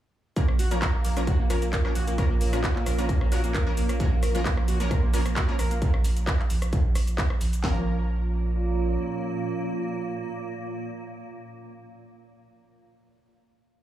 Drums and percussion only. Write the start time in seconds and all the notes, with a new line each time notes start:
0.36 kick, closed hi-hat, shaker
0.48 cross-stick
0.59 open hi-hat, shaker
0.71 closed hi-hat, shaker
0.82 kick, cross-stick, clap, closed hi-hat, shaker
1.05 open hi-hat, shaker
1.17 cross-stick, closed hi-hat, shaker
1.27 kick, closed hi-hat, shaker
1.50 cross-stick, open hi-hat, shaker
1.62 closed hi-hat, shaker
1.73 kick, clap, closed hi-hat, shaker
1.85 cross-stick
1.95 open hi-hat, shaker
2.07 closed hi-hat, shaker
2.18 kick, cross-stick, closed hi-hat, shaker
2.41 open hi-hat, shaker
2.53 cross-stick, closed hi-hat, shaker
2.64 kick, clap, closed hi-hat, shaker
2.76 clap
2.86 cross-stick, open hi-hat, shaker
2.99 closed hi-hat, shaker
3.09 kick, closed hi-hat, shaker
3.21 cross-stick
3.32 open hi-hat, shaker
3.44 closed hi-hat, shaker
3.54 kick, cross-stick, clap, closed hi-hat, shaker
3.77 open hi-hat, shaker
3.89 cross-stick, closed hi-hat, shaker
4.00 kick, closed hi-hat, shaker
4.23 cross-stick, open hi-hat, shaker
4.35 closed hi-hat, shaker
4.45 kick, clap, closed hi-hat, shaker
4.57 cross-stick
4.68 open hi-hat, shaker
4.80 closed hi-hat, shaker
4.91 kick, cross-stick, closed hi-hat, shaker
5.14 open hi-hat, shaker
5.26 cross-stick, closed hi-hat, shaker
5.36 kick, clap, closed hi-hat, shaker
5.59 cross-stick, open hi-hat, shaker
5.71 closed hi-hat, shaker
5.82 kick, closed hi-hat, shaker
5.94 cross-stick
6.04 open hi-hat, shaker
6.17 closed hi-hat, shaker
6.27 kick, cross-stick, clap, closed hi-hat, shaker
6.39 clap
6.50 open hi-hat, shaker
6.62 cross-stick, closed hi-hat, shaker
6.73 kick, closed hi-hat, shaker
6.95 cross-stick, open hi-hat, shaker
7.07 closed hi-hat, shaker
7.18 kick, clap, closed hi-hat, shaker
7.30 cross-stick
7.41 open hi-hat, shaker
7.53 closed hi-hat, shaker
7.64 kick, snare, clap